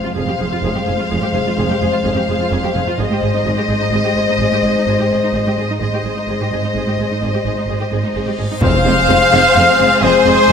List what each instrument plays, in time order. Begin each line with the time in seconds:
Already playing: french horn section G#3 C5, violin section C5 F5
0.03 cello section F2, viola section F4
0.15 double bass section F1, cello section F2, french horn section G#3 C5, viola section G#4, violin section C5 F5
0.26 cello section F2, viola section G4
0.39 double bass section F1, cello section F2, viola section G#4
0.51 cello section F2, viola section F4
0.63 double bass section F1, cello section F2, viola section G#4
0.75 cello section F2, viola section G4
0.86 double bass section F1, cello section F2, viola section G#4
0.99 cello section F2, viola section F4
1.10 double bass section F1, cello section F2, viola section G#4
1.21 cello section F2, viola section G4
1.34 double bass section F1, cello section F2, viola section G#4
1.45 cello section F2, viola section F4
1.57 double bass section F1, cello section F2, viola section G#4
1.69 cello section F2, viola section G4
1.80 double bass section F1, cello section F2, viola section G#4
1.91 cello section F2, viola section F4
2.03 double bass section F1, cello section F2, viola section G#4
2.15 cello section F2, viola section G4
2.27 double bass section F1, cello section F2, viola section G#4
2.39 cello section F2, viola section F4
2.51 double bass section F1, cello section F2, viola section G#4
2.64 cello section F2, viola section G4
2.74 double bass section F1, cello section F2, viola section G#4
2.86 cello section F2, viola section F4
2.97 double bass section G#1, cello section G#2, french horn section G#3 C5, viola section G#4, violin section C5 D#5
3.10 cello section G#2, viola section G4
3.22 double bass section G#1, cello section G#2, viola section G#4
3.35 cello section G#2, viola section D#4
3.46 double bass section G#1, cello section G#2, viola section G#4
3.58 cello section G#2, viola section G4
3.69 double bass section G#1, cello section G#2, viola section G#4
3.80 cello section G#2, viola section D#4
3.92 double bass section G#1, cello section G#2, viola section G#4
4.04 cello section G#2, viola section G4
4.15 double bass section G#1, cello section G#2, viola section G#4
4.28 cello section G#2, viola section D#4
4.39 double bass section G#1, cello section G#2, viola section G#4
4.51 cello section G#2, viola section G4
4.63 double bass section G#1, cello section G#2, viola section G#4
4.75 cello section G#2, viola section D#4
4.86 double bass section G#1, cello section G#2, viola section G#4
4.99 cello section G#2, viola section G4
5.10 double bass section G#1, cello section G#2, viola section G#4
5.22 cello section G#2, viola section D#4
5.33 double bass section G#1, cello section G#2, viola section G#4
5.46 cello section G#2, viola section G4
5.57 double bass section G#1, cello section G#2, viola section G#4
5.69 cello section G#2, viola section D#4
5.80 double bass section G#1, cello section G#2, french horn section G#3 C5, viola section G#4, violin section C5 D#5, reverse cymbal
5.92 cello section G#2, viola section G4
6.04 double bass section G#1, cello section G#2, viola section G#4
6.16 cello section G#2, viola section D#4
6.28 double bass section G#1, cello section G#2, viola section G#4
6.40 cello section G#2, viola section G4
6.51 double bass section G#1, cello section G#2, viola section G#4
6.63 cello section G#2, viola section D#4
6.75 double bass section G#1, cello section G#2, viola section G#4
6.87 cello section G#2, viola section G4
6.98 double bass section G#1, cello section G#2, viola section G#4
7.10 cello section G#2, viola section D#4
7.21 double bass section G#1, cello section G#2, viola section G#4
7.33 cello section G#2, viola section G4
7.45 double bass section G#1, cello section G#2, viola section G#4
7.57 cello section G#2, viola section D#4
7.68 double bass section G#1, cello section G#2, viola section G#4
7.80 cello section G#2, viola section G4
7.91 double bass section G#1, cello section G#2, viola section G#4
8.04 cello section G#2, viola section D#4
8.15 double bass section G#1, cello section G#2, viola section G#4
8.26 cello section G#2, viola section G4
8.38 double bass section G#1, cello section G#2, viola section G#4
8.51 cello section G#2, viola section D#4
8.61 double bass section F1, timpani F2, cello section F2, viola section G#3 C4, french horn section G#3 C5, string section C4 G#4 C5, violin section C5 F5, flute F5, trumpet F5, impact
8.85 double bass section F1, cello section F2, viola section G#3 C4
9.08 double bass section F1, cello section F2, viola section G#3 C4
9.32 double bass section F1, cello section F2, viola section G#3 C4
9.54 double bass section F1, cello section F2, viola section G#3 C4
9.79 double bass section F1, cello section F2, viola section G#3 C4
10.01 double bass section F1, cello section F2, viola section G#3 C4, violin section G#4 C5, trumpet C5, flute C5
10.25 double bass section F1, cello section F2, viola section G#3 C4
10.48 double bass section F1, cello section F2, viola section G#3 C4